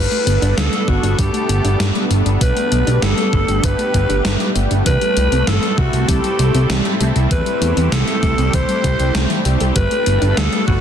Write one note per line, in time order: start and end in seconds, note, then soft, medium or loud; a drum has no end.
0.00 10.81 G3 medium
0.00 10.81 A3 medium
0.00 4.82 B3 medium
0.00 4.82 D4 medium
0.00 2.39 A4 medium
0.00 0.59 B4 loud
0.12 0.26 A3 medium
0.12 closed hi-hat soft
0.27 0.39 G1 medium
0.27 0.37 B3 medium
0.27 closed hi-hat medium
0.42 0.54 G1 medium
0.42 0.52 D4 loud
0.42 closed hi-hat soft
0.57 0.69 D2 loud
0.57 0.68 G3 loud
0.57 0.90 A4 loud
0.57 snare loud
0.57 closed hi-hat medium
0.72 0.87 A3 medium
0.72 closed hi-hat soft
0.88 1.00 G1 medium
0.88 0.98 B3 medium
0.88 1.21 F#4 medium
0.88 kick loud
1.03 1.15 G1 medium
1.03 1.18 D4 medium
1.03 closed hi-hat soft
1.18 1.31 G1 loud
1.18 1.29 G3 loud
1.18 2.11 G4 medium
1.18 kick loud
1.18 closed hi-hat medium
1.34 1.48 A3 medium
1.34 closed hi-hat soft
1.49 1.61 G1 loud
1.49 1.60 B3 medium
1.49 closed hi-hat medium
1.64 1.77 G1 medium
1.64 1.75 D4 medium
1.64 closed hi-hat soft
1.80 1.92 G1 loud
1.80 1.90 G3 loud
1.80 snare loud
1.80 closed hi-hat medium
1.95 2.10 A3 medium
1.95 closed hi-hat soft
2.10 2.23 G1 medium
2.10 2.21 B3 medium
2.10 closed hi-hat medium
2.26 2.38 G1 medium
2.26 2.40 D4 medium
2.26 closed hi-hat soft
2.41 2.53 B1 loud
2.41 2.51 G3 loud
2.41 4.84 G4 medium
2.41 3.05 B4 loud
2.41 kick loud
2.41 closed hi-hat medium
2.56 2.71 A3 medium
2.56 closed hi-hat soft
2.72 2.84 B1 medium
2.72 2.82 B3 medium
2.72 closed hi-hat medium
2.87 2.99 B1 medium
2.87 2.97 D4 loud
2.87 closed hi-hat soft
3.02 3.14 G1 loud
3.02 3.13 G3 loud
3.02 3.65 A4 medium
3.02 snare loud
3.02 closed hi-hat medium
3.17 3.32 A3 medium
3.17 closed hi-hat soft
3.33 3.45 G1 medium
3.33 3.43 B3 medium
3.33 kick loud
3.48 3.60 G1 medium
3.48 3.63 D4 medium
3.48 closed hi-hat soft
3.63 3.76 G1 loud
3.63 3.74 G3 loud
3.63 4.56 B4 loud
3.63 kick loud
3.63 closed hi-hat medium
3.79 3.93 A3 medium
3.79 closed hi-hat soft
3.94 4.06 G1 medium
3.94 4.04 B3 medium
3.94 kick medium
3.94 closed hi-hat medium
4.09 4.22 G1 medium
4.09 4.20 D4 loud
4.09 closed hi-hat soft
4.25 4.37 G1 loud
4.25 4.35 G3 medium
4.25 snare loud
4.25 closed hi-hat medium
4.40 4.55 A3 medium
4.40 closed hi-hat soft
4.55 4.67 G1 medium
4.55 4.66 B3 medium
4.55 closed hi-hat medium
4.71 4.83 G1 medium
4.71 4.85 D4 medium
4.71 closed hi-hat soft
4.86 4.98 C2 loud
4.86 4.96 E3 loud
4.86 9.72 C4 medium
4.86 9.72 E4 medium
4.86 7.29 A4 medium
4.86 5.49 B4 loud
4.86 kick loud
4.86 closed hi-hat medium
5.01 5.16 G3 medium
5.01 closed hi-hat soft
5.17 5.29 C2 medium
5.17 5.27 A3 medium
5.17 closed hi-hat medium
5.32 5.44 C2 medium
5.32 5.42 C4 loud
5.32 closed hi-hat soft
5.47 5.59 G1 loud
5.47 5.58 E3 loud
5.47 5.79 A4 loud
5.47 snare loud
5.47 closed hi-hat medium
5.63 5.77 G3 medium
5.63 closed hi-hat soft
5.78 5.90 C2 medium
5.78 5.88 A3 medium
5.78 6.10 F#4 medium
5.78 kick loud
5.93 6.05 C2 medium
5.93 6.08 C4 medium
5.93 closed hi-hat soft
6.08 6.21 C2 loud
6.08 6.19 E3 loud
6.08 7.00 G4 medium
6.08 kick loud
6.08 closed hi-hat medium
6.24 6.39 G3 medium
6.24 closed hi-hat soft
6.39 6.51 C2 loud
6.39 6.50 A3 medium
6.39 closed hi-hat medium
6.54 6.66 C2 medium
6.54 6.65 C4 loud
6.54 closed hi-hat soft
6.70 6.82 C2 loud
6.70 6.80 E3 loud
6.70 snare loud
6.70 closed hi-hat medium
6.85 7.00 G3 medium
6.85 closed hi-hat soft
7.00 7.12 C2 medium
7.00 7.11 A3 medium
7.00 closed hi-hat medium
7.16 7.28 C2 medium
7.16 7.30 C4 medium
7.16 closed hi-hat soft
7.31 7.43 E2 loud
7.31 7.41 E3 medium
7.31 9.73 G4 medium
7.31 7.94 B4 loud
7.31 kick loud
7.31 closed hi-hat medium
7.46 7.61 G3 medium
7.46 closed hi-hat soft
7.61 7.73 E2 medium
7.61 7.72 A3 medium
7.61 closed hi-hat medium
7.77 7.89 E2 medium
7.77 7.87 C4 loud
7.77 closed hi-hat soft
7.92 8.04 C2 loud
7.92 8.03 E3 loud
7.92 8.55 A4 medium
7.92 snare loud
7.92 closed hi-hat medium
8.08 8.22 G3 medium
8.08 closed hi-hat soft
8.23 8.35 C2 loud
8.23 8.33 A3 medium
8.23 kick loud
8.23 closed hi-hat soft
8.38 8.50 C2 medium
8.38 8.53 C4 medium
8.38 closed hi-hat soft
8.53 8.65 C2 loud
8.53 8.64 E3 loud
8.53 9.46 C5 loud
8.53 kick loud
8.53 closed hi-hat medium
8.69 8.83 G3 medium
8.69 closed hi-hat soft
8.84 8.96 C2 medium
8.84 8.95 G4 medium
8.84 kick medium
8.84 closed hi-hat medium
9.00 9.11 C2 medium
9.00 9.10 G3 medium
9.00 closed hi-hat soft
9.15 9.27 C2 loud
9.15 9.25 A3 loud
9.15 snare loud
9.15 closed hi-hat medium
9.30 9.40 E3 loud
9.30 closed hi-hat soft
9.45 9.57 C2 loud
9.45 9.56 G4 medium
9.45 closed hi-hat medium
9.60 9.73 C2 medium
9.60 9.67 A4 medium
9.60 closed hi-hat soft
9.76 9.88 G1 loud
9.76 9.86 G3 loud
9.76 10.81 B3 medium
9.76 10.81 D4 medium
9.76 10.81 A4 medium
9.76 10.38 B4 loud
9.76 kick loud
9.76 closed hi-hat medium
9.91 10.06 A3 medium
9.91 closed hi-hat soft
10.06 10.19 G1 medium
10.06 10.17 B3 medium
10.06 closed hi-hat medium
10.22 10.34 G1 medium
10.22 10.32 D4 loud
10.22 closed hi-hat soft
10.37 10.49 D2 loud
10.37 10.47 G3 loud
10.37 10.67 A4 loud
10.37 snare loud
10.37 closed hi-hat medium
10.53 10.67 A3 medium
10.53 closed hi-hat soft
10.67 10.80 G1 medium
10.67 10.78 B3 medium
10.67 10.81 F#4 medium
10.67 kick loud